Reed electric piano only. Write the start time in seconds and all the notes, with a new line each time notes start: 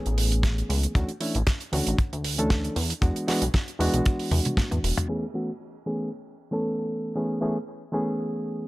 Already playing: E3 A3 B3 C#4 G#4
0.95 E3 A3 C#4 D4 F#4
1.20 E3 A3 C#4 D4 E4
1.72 E3 A3 C#4 D4 F#4
2.38 E3 A3 C#4 D4 A4
3.02 E3 G#3 B3 D4 F#4
3.27 E3 G#3 B3 D4 F#4
3.79 E3 G#3 B3 D4 F#4
5.08 E3 A3 B3 C#4 G#4
5.34 E3 A3 B3 C#4 F#4
5.86 E3 A3 B3 C#4 G#4
6.51 E3 A3 B3 C#4 A4
7.15 E3 A3 B3 C#4 G#4
7.41 E3 A3 B3 C#4 G#4
7.92 E3 A3 B3 C#4 G#4